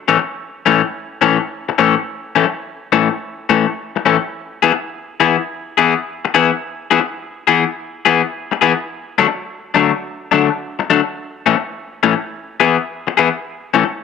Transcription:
0.08 A2 E3 A3 C#4
0.19 muted clean electric guitar stroke
0.66 A2 E3 A3 C#4
1.21 A2 E3 A3 C#4
1.69 muted clean electric guitar stroke
1.78 A2 E3 A3 C#4
2.35 A2 E3 A3 C#4
2.46 muted clean electric guitar stroke
2.92 A2 E3 A3 C#4
3.49 A2 E3 A3 C#4
3.96 muted clean electric guitar stroke
4.06 A2 E3 A3 C#4
4.63 E3 B3 E4 G#4
4.73 muted clean electric guitar stroke
5.20 E3 B3 E4 G#4
5.78 E3 B3 E4 G#4
6.25 muted clean electric guitar stroke
6.34 E3 B3 E4 G#4
6.91 E3 B3 E4 G#4
7.01 muted clean electric guitar stroke
7.47 E3 B3 E4 G#4
8.05 E3 B3 E4 G#4
8.52 muted clean electric guitar stroke
8.61 E3 B3 E4 G#4
9.18 D3 F#3 A3 D4
9.28 muted clean electric guitar stroke
9.74 D3 F#3 A3 D4
10.32 D3 F#3 A3 D4
10.79 muted clean electric guitar stroke
10.90 D3 F#3 A3 D4
11.46 A2 E3 A3 C#4
11.56 muted clean electric guitar stroke
12.03 A2 E3 A3 C#4
12.60 E3 B3 E4 G#4
13.07 muted clean electric guitar stroke
13.17 E3 B3 E4 G#4
13.74 A2 E3 A3 C#4
13.84 muted clean electric guitar stroke

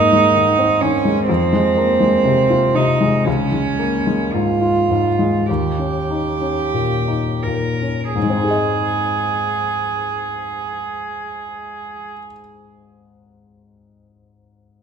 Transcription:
Already playing: G#2 G#3 A#3 D#4
0.13 G#3
0.36 D#3
0.59 C4
0.81 D#3 C#4
1.05 G#3
1.27 F2 C4
1.53 G#3
1.77 A#3
2.00 G#3
2.25 C3
2.50 F4
2.75 C3 D#4
3.01 G#3
3.26 C#2 C#4
3.52 G#3
3.79 A#3
4.07 G#3
4.33 G#2 F4
4.61 F4
4.90 G#2
5.19 G#3
5.46 D#2 G4
5.79 C#4
6.11 D#4
6.41 C#4
6.74 A#2
7.08 D#4
7.43 A#2 A#4
7.81 C#4
8.15 G#2 G#4
8.23 G#3
8.30 C4
8.37 D#4
8.44 G#4
8.51 D#5

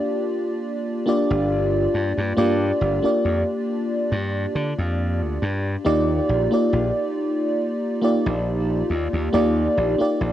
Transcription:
Already playing: A#3 D4 F4 G4 D5
1.06 A#3 D4 F4 G4 D5
1.30 G1
1.94 G2
2.18 G2
2.37 G2 A#3 D4 F4 G4 D5
2.81 G1
3.03 A#3 D4 F4 G4 D5, muted slap bass stroke
3.25 F2
4.12 G2
4.55 D3
4.78 F2
5.22 D2
5.42 G2
5.85 D#2 A#3 D#4 F4 G4 D5
6.29 A#1
6.51 A#3 D#4 F4 G4 D5
6.73 A#1
8.02 A#3 D#4 F4 G4 D5
8.26 A#1
8.90 D#2
9.13 D#2
9.32 D#2 A#3 D#4 F4 G4 D5
9.77 A#1
9.98 A#3 D#4 F4 G4 D5, muted slap bass stroke
10.21 A#1

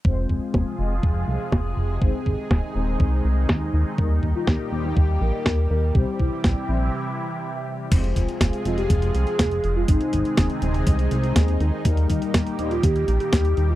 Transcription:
0.05 F1 C3 F3 G#3 C4 F4 G#4 C5, kick
0.29 F1, kick
0.54 F1, kick, snare
0.79 F1 G#3 C4 F4 D#5
1.03 F1, kick
1.28 C2
1.52 F1, kick, snare
1.77 F1
2.01 G#1 D#3 G#3 C4 D#4 C5, kick
2.26 G#1, kick
2.51 D#1, kick, snare
2.75 D#1 G#3 C4 D#4 C5
3.00 C2, kick
3.25 C2
3.49 D#2, kick, snare
3.74 D#2
3.98 D#2 A#2 G3 A#3 D#4 G4 A#4, kick
4.23 D#2, kick
4.35 F4
4.47 D#2 G4, kick, snare
4.72 D#2 G3 A#3 D#4 C5
4.85 D#4
4.97 D#2 G4, kick
5.21 A#1 A#4
5.46 D#2, kick, snare
5.70 D#2 A#4
5.95 C2 C3 E3 G3 C4 E4 G4 C5, kick
6.20 C2 E4, kick
6.44 A#1, kick, snare
6.69 A#1 G3 C4 E4 C5
7.92 F1 C3 F3 G#3 C4 F4 G#4 C5, kick, closed hi-hat, crash
8.04 closed hi-hat
8.16 F1, kick, closed hi-hat
8.29 closed hi-hat
8.41 F1, kick, snare, closed hi-hat
8.53 closed hi-hat
8.65 F1 G#3 C4 F4 D#5, closed hi-hat
8.78 G4, closed hi-hat
8.90 F1 G#4, kick, closed hi-hat
9.02 closed hi-hat
9.15 C2, closed hi-hat
9.27 G#4, closed hi-hat
9.39 F1, kick, snare, closed hi-hat
9.51 closed hi-hat
9.64 F1, closed hi-hat
9.76 F4
9.88 G#1 C3 D#3 G#3 C4 D#4 G#4 C5, kick, closed hi-hat
10.01 closed hi-hat
10.13 G#1, kick, closed hi-hat
10.25 closed hi-hat
10.37 D#1, kick, snare, closed hi-hat
10.50 closed hi-hat
10.62 D#1 G#3 C4 D#4 C5, closed hi-hat
10.74 closed hi-hat
10.87 C2, kick, closed hi-hat
10.99 closed hi-hat
11.11 C2, closed hi-hat
11.24 closed hi-hat
11.36 D#2, kick, snare, closed hi-hat
11.48 closed hi-hat
11.60 D#2, closed hi-hat
11.85 D#2 A#2 G3 A#3 D#4 G4 A#4, kick, closed hi-hat
11.97 closed hi-hat
12.10 D#2, kick, closed hi-hat
12.22 closed hi-hat
12.34 D#2, kick, snare, closed hi-hat
12.47 closed hi-hat
12.59 D#2 G3 A#3 D#4 C5, closed hi-hat
12.71 F4, closed hi-hat
12.83 D#2 G4, kick, closed hi-hat
12.96 closed hi-hat
13.08 A#1, closed hi-hat
13.20 G4, closed hi-hat
13.33 D#2, kick, snare, closed hi-hat
13.45 closed hi-hat
13.57 D#2, closed hi-hat
13.69 F4

